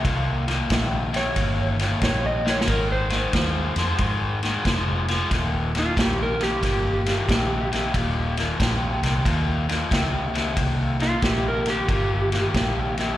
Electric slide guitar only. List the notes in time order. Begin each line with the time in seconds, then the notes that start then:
1.16 C#5
2.04 C#5
2.26 D#5
2.50 C#5
2.69 A#4
2.92 C5
5.79 F4
6.01 G4
6.23 A#4
6.43 G4
11.02 F4
11.25 G4
11.48 A#4
11.70 G4